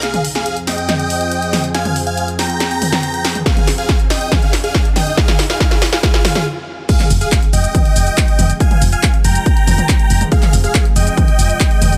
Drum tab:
CC |----------------|----------------|----------------|----------------|
HH |xxoxxxoxxxoxxxox|xxoxxxoxxxoxxxox|xxoxxxoxxxoxxxox|xxoxxxoxxxox----|
SH |----------------|----------------|----------------|----------------|
CP |----------------|----------------|----------------|----------------|
SD |o--o--o-o-----o-|o-----o-o--o--o-|o-o-o-o-o-o-o-o-|oooooooooooo----|
T2 |-o------o-----o-|-o--------oo---o|-o------o-----o-|-o--------oo----|
BD |----------------|----------------|o---o---o---o---|o---o---o-------|

CC |x---------------|----------------|----------------|
HH |xxoxxxoxxxoxxxox|xxoxxxoxxxoxxxox|xxoxxxoxxxoxxxox|
SH |x-xxx-xxx-xxx-xx|x-xxx-xxx-xxx-xx|x-xxx-xxx-xxx-xx|
CP |-x--x-------x---|----x-------x---|-x--x-------x---|
SD |----------------|----------------|----------------|
T2 |-o------o-----o-|-o--------oo---o|-o------o-----o-|
BD |o---o---o---o---|o---o---o---o---|o---o---o---o---|